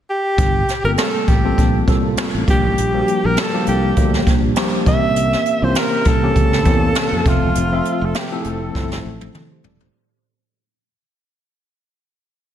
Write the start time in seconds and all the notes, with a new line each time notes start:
0.10 G4
0.38 G1, kick, closed hi-hat
0.69 snare, closed hi-hat
0.84 G1 G3 A3 C4 F4 A4 A#4
0.91 A#3
0.97 A4, snare, closed hi-hat
1.28 A1 G4, kick, closed hi-hat
1.44 G3 A#3 C4 F4 A4
1.58 A#1, kick, closed hi-hat
1.87 C2 G3 A#3 C4 F4 A4, kick, closed hi-hat
2.17 snare, closed hi-hat
2.34 A1
2.47 A#1 F3 G3 A#3 D4 G4, kick, closed hi-hat
2.64 A1
2.78 A#1, closed hi-hat
2.94 F3 G3 A#3 D4 F#4
3.01 G4
3.08 closed hi-hat
3.24 A#1 A#4
3.37 A4, snare, closed hi-hat
3.53 F3 G3 A#3 D4 G4
3.67 C2 G4, closed hi-hat
3.96 D2 F3 G3 A#3 D4 G4, kick, closed hi-hat
4.14 snare
4.27 A#1, kick, snare, closed hi-hat
4.56 F3 G3 A#3 D4 G4, snare, closed hi-hat
4.86 C2 E3 A#3 C4 C#4 G4 E5, kick, closed hi-hat
5.16 closed hi-hat
5.33 snare
5.46 closed hi-hat
5.62 C2 E3 A#3 C4 C#4 F4 C5
5.70 G4
5.75 A#4, snare, closed hi-hat
6.05 C2 A4, kick, closed hi-hat
6.22 E3 A#3 C4 C#4 G4
6.36 C#2, kick, closed hi-hat
6.53 snare
6.65 E2 E3 A#3 C4 C#4 G4, kick, closed hi-hat
6.95 snare, closed hi-hat
7.12 F2
7.25 F1 F3 A3 C4 F4 A4 E5, kick, closed hi-hat
7.42 E1
7.55 F1, closed hi-hat
7.72 F3 A3 C4 A4 E5
7.85 closed hi-hat
8.01 F1 A4
8.14 G4, snare, closed hi-hat
8.31 F3 A3 C4 E4 A4
8.41 G#4, closed hi-hat
8.45 F1 A4
8.75 G1 F3 A3 C4 E4 A4, kick, snare
8.91 snare
9.05 A1
9.21 high tom
9.35 mid tom
9.52 G4 C5
9.64 E1 A4 D5, floor tom
9.80 G4 C5, floor tom